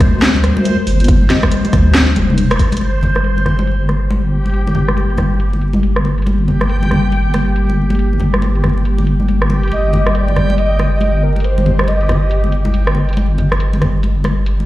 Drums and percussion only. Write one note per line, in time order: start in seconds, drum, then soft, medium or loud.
0.00 kick loud
0.00 cross-stick medium
0.00 closed hi-hat medium
0.00 muted conga medium
0.00 high conga medium
0.00 low conga medium
0.22 snare loud
0.22 closed hi-hat medium
0.36 muted conga medium
0.44 cross-stick medium
0.44 closed hi-hat medium
0.57 muted conga medium
0.65 closed hi-hat medium
0.87 open hi-hat medium
0.87 muted conga medium
1.00 closed hi-hat soft
1.04 closed hi-hat medium
1.08 kick loud
1.08 closed hi-hat medium
1.08 muted conga medium
1.22 high conga medium
1.30 snare medium
1.30 closed hi-hat medium
1.30 low conga medium
1.43 kick medium
1.43 cross-stick medium
1.43 muted conga medium
1.43 high conga medium
1.52 closed hi-hat medium
1.65 closed hi-hat soft
1.65 muted conga medium
1.73 kick loud
1.73 cross-stick medium
1.73 closed hi-hat medium
1.73 high conga medium
1.73 low conga medium
1.95 snare loud
1.95 closed hi-hat medium
1.95 muted conga medium
2.16 closed hi-hat medium
2.16 muted conga medium
2.30 high conga medium
2.38 closed hi-hat medium
2.51 cross-stick medium
2.51 closed hi-hat soft
2.51 muted conga medium
2.59 kick medium
2.59 open hi-hat loud
2.72 closed hi-hat soft
2.72 muted conga medium
2.77 closed hi-hat medium
2.81 closed hi-hat medium
2.81 muted conga soft
3.03 closed hi-hat medium
3.03 muted conga medium
3.03 low conga medium
3.15 cross-stick medium
3.15 high conga medium
3.24 closed hi-hat medium
3.37 closed hi-hat soft
3.37 muted conga medium
3.46 cross-stick soft
3.46 closed hi-hat medium
3.46 high conga medium
3.46 low conga medium
3.59 muted conga medium
3.67 closed hi-hat medium
3.89 cross-stick soft
3.89 closed hi-hat medium
3.89 muted conga soft
4.10 closed hi-hat medium
4.10 muted conga medium
4.45 closed hi-hat soft
4.45 muted conga soft
4.49 closed hi-hat medium
4.54 closed hi-hat medium
4.67 muted conga medium
4.67 high conga medium
4.75 closed hi-hat medium
4.75 low conga medium
4.88 cross-stick medium
4.88 high conga medium
4.97 closed hi-hat medium
4.97 muted conga soft
5.10 closed hi-hat soft
5.18 cross-stick soft
5.18 closed hi-hat medium
5.18 muted conga medium
5.18 high conga medium
5.18 low conga medium
5.40 closed hi-hat medium
5.53 muted conga soft
5.61 closed hi-hat medium
5.73 muted conga medium
5.73 high conga medium
5.83 closed hi-hat medium
5.96 cross-stick medium
6.05 muted conga medium
6.18 closed hi-hat soft
6.22 closed hi-hat medium
6.26 closed hi-hat medium
6.26 muted conga medium
6.48 closed hi-hat medium
6.48 low conga medium
6.61 cross-stick medium
6.61 muted conga soft
6.61 high conga medium
6.69 closed hi-hat medium
6.83 closed hi-hat soft
6.83 muted conga medium
6.91 cross-stick soft
6.91 closed hi-hat medium
6.91 high conga medium
6.91 low conga medium
7.12 closed hi-hat medium
7.12 muted conga soft
7.34 cross-stick soft
7.34 closed hi-hat soft
7.34 muted conga medium
7.56 closed hi-hat medium
7.70 muted conga soft
7.90 closed hi-hat soft
7.90 muted conga medium
7.95 closed hi-hat medium
7.99 closed hi-hat medium
8.13 high conga medium
8.20 closed hi-hat soft
8.20 muted conga soft
8.20 low conga medium
8.34 cross-stick medium
8.34 high conga medium
8.42 closed hi-hat medium
8.42 muted conga medium
8.55 closed hi-hat soft
8.64 cross-stick medium
8.64 closed hi-hat soft
8.64 high conga medium
8.64 low conga medium
8.78 muted conga soft
8.85 closed hi-hat medium
8.98 muted conga medium
9.07 closed hi-hat soft
9.20 high conga medium
9.28 closed hi-hat medium
9.28 muted conga soft
9.42 cross-stick medium
9.50 muted conga medium
9.63 closed hi-hat soft
9.68 closed hi-hat medium
9.72 closed hi-hat medium
9.72 muted conga soft
9.93 closed hi-hat soft
9.93 muted conga medium
9.93 low conga medium
10.06 cross-stick medium
10.06 high conga medium
10.15 closed hi-hat medium
10.28 closed hi-hat soft
10.28 muted conga soft
10.36 cross-stick soft
10.36 closed hi-hat soft
10.36 high conga medium
10.36 low conga medium
10.50 muted conga medium
10.58 closed hi-hat medium
10.79 cross-stick soft
10.79 closed hi-hat soft
10.79 muted conga medium
11.01 closed hi-hat medium
11.01 muted conga medium
11.36 closed hi-hat soft
11.36 muted conga soft
11.40 closed hi-hat medium
11.44 closed hi-hat medium
11.58 muted conga medium
11.58 high conga medium
11.66 closed hi-hat soft
11.66 low conga medium
11.79 cross-stick medium
11.79 high conga medium
11.87 closed hi-hat medium
11.87 muted conga medium
12.01 closed hi-hat soft
12.09 cross-stick medium
12.09 closed hi-hat soft
12.09 muted conga medium
12.09 high conga medium
12.09 low conga medium
12.31 closed hi-hat medium
12.44 muted conga medium
12.52 closed hi-hat soft
12.65 muted conga medium
12.65 high conga medium
12.74 closed hi-hat medium
12.87 cross-stick medium
12.95 muted conga medium
13.09 closed hi-hat soft
13.13 closed hi-hat medium
13.17 closed hi-hat medium
13.17 muted conga medium
13.38 closed hi-hat medium
13.38 low conga medium
13.52 cross-stick medium
13.52 muted conga medium
13.52 high conga medium
13.60 closed hi-hat medium
13.73 closed hi-hat soft
13.73 muted conga medium
13.82 cross-stick medium
13.82 closed hi-hat medium
13.82 high conga medium
13.82 low conga loud
14.03 closed hi-hat medium
14.03 muted conga medium
14.24 cross-stick medium
14.24 closed hi-hat soft
14.24 muted conga medium
14.46 closed hi-hat medium
14.60 muted conga medium